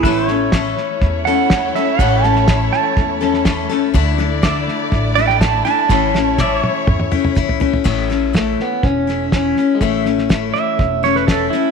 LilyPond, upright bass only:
\new Staff \with { instrumentName = "Upright bass" } { \clef bass \time 4/4 \key a \major \tempo 4 = 123 a,,2 e,2 | a,,2 e,2 | d,2 a,,2 | a,,2 e,2 |
a,,2 e,,2 | a,,2 e,,2 | }